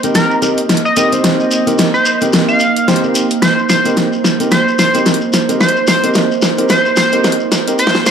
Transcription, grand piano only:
0.04 0.40 C4 medium
0.04 0.40 D#4 medium
0.04 0.40 G4 medium
0.04 0.40 A#4 medium
0.42 0.58 C4 medium
0.42 0.58 D#4 medium
0.42 0.58 G4 medium
0.42 0.58 A#4 loud
0.97 1.10 C4 medium
0.97 1.10 D#4 medium
0.97 1.10 G4 medium
0.97 1.10 A#4 loud
1.12 1.63 C4 medium
1.12 1.63 D#4 medium
1.12 1.63 G4 medium
1.12 1.63 C5 medium
1.67 1.88 C4 medium
1.67 1.88 D#4 medium
1.67 1.88 G4 medium
1.67 1.88 A#4 medium
2.22 2.58 C4 medium
2.22 2.58 D#4 medium
2.22 2.58 G4 medium
2.22 2.58 A#4 medium
2.88 3.01 C4 medium
2.88 3.01 D#4 medium
2.88 3.01 G4 medium
2.88 3.01 C5 loud
3.04 3.25 C4 medium
3.04 3.25 D#4 medium
3.04 3.25 G4 medium
3.04 3.25 A#4 medium
3.85 4.06 C4 medium
3.85 4.06 D#4 medium
3.85 4.06 G4 medium
3.85 4.06 A#4 medium
4.40 4.50 C4 medium
4.40 4.50 D#4 medium
4.40 4.50 G4 medium
4.40 4.50 A#4 medium
4.94 5.16 C4 medium
4.94 5.16 D#4 medium
4.94 5.16 G4 medium
4.94 5.16 A#4 medium
5.49 5.59 C4 medium
5.49 5.59 D#4 medium
5.49 5.59 G4 medium
5.49 5.59 A#4 medium
6.04 6.25 C4 medium
6.04 6.25 D#4 medium
6.04 6.25 G4 medium
6.04 6.25 A#4 medium
6.58 6.68 C4 medium
6.58 6.68 D#4 medium
6.58 6.68 G4 medium
6.58 6.68 A#4 medium
7.13 7.34 C4 medium
7.13 7.34 D#4 medium
7.13 7.34 G4 medium
7.13 7.34 A#4 medium
7.67 7.77 C4 medium
7.67 7.77 D#4 medium
7.67 7.77 G4 medium
7.67 7.77 A#4 medium

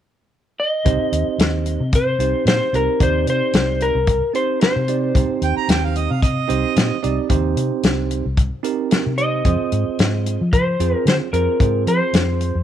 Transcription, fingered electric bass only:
0.86 0.99 C2 medium
1.12 1.26 D#2 medium
1.28 muted fingered electric bass stroke soft
1.38 1.76 D#2 medium
1.80 2.16 C3 medium
2.19 2.33 C2 medium
2.45 2.59 A#2 medium
2.73 2.87 C2 medium
3.00 3.25 D#2 medium
3.27 3.41 C3 medium
3.54 3.91 C2 medium
3.95 4.20 C2 medium
4.76 5.11 C3 medium
5.15 5.29 C2 medium
5.42 5.55 D#2 medium
5.57 muted fingered electric bass stroke soft
5.68 6.06 D#2 medium
6.11 6.46 C3 medium
6.50 6.63 C2 medium
6.76 6.90 A#2 medium
7.04 7.17 C2 medium
7.30 7.54 D#2 medium
7.56 7.70 C3 medium
7.83 8.21 C2 medium
8.25 8.50 C2 medium
9.06 9.41 C3 medium
9.45 9.58 F2 medium
9.60 muted fingered electric bass stroke soft
9.72 9.85 G#2 medium
9.88 muted fingered electric bass stroke soft
9.99 10.36 G#2 medium
10.41 10.76 F3 medium
10.80 10.93 F2 medium
11.05 11.19 D3 medium
11.33 11.46 F2 medium
11.60 11.84 G#2 medium
11.87 12.00 F3 medium
12.13 12.51 F2 medium
12.55 12.63 F2 medium

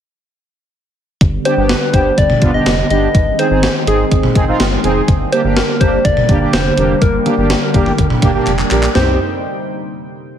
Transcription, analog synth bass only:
1.21 1.38 G1 loud
1.57 1.74 G1 loud
1.94 2.10 G1 loud
2.18 2.35 G1 loud
2.42 2.59 G1 loud
2.66 2.83 F1 medium
2.90 3.07 G1 medium
3.15 3.32 G#1 loud
3.51 3.68 G#1 medium
3.87 4.04 G#1 loud
4.11 4.28 G#1 loud
4.35 4.52 G#1 loud
4.60 4.77 G1 loud
4.84 5.01 F1 medium
5.08 5.25 G1 loud
5.44 5.61 G1 loud
5.81 5.98 G1 loud
6.05 6.22 G1 loud
6.29 6.46 G1 loud
6.53 6.70 F1 medium
6.77 6.94 F1 medium
7.02 7.19 G1 loud
7.38 7.55 G1 loud
7.74 7.91 G1 loud
7.99 8.15 G1 loud
8.22 8.39 G1 loud
8.47 8.64 F1 medium
8.71 8.88 A#1 medium
8.95 9.18 C2 loud

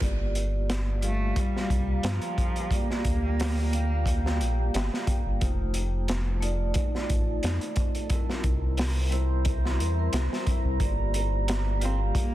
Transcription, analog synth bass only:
0.02 1.33 G1 loud
1.70 2.00 C2 medium
2.04 2.20 G2 medium
3.05 4.42 D2 loud
4.41 4.70 A#1 medium
4.74 4.90 G1 medium
5.26 5.39 G1 medium
5.42 6.73 F1 loud
7.10 7.40 A1 medium
7.44 7.59 F2 medium
8.44 9.81 C2 loud
9.79 10.09 E2 medium
10.13 10.29 C2 medium
10.65 10.79 C2 medium
10.80 12.12 G1 loud

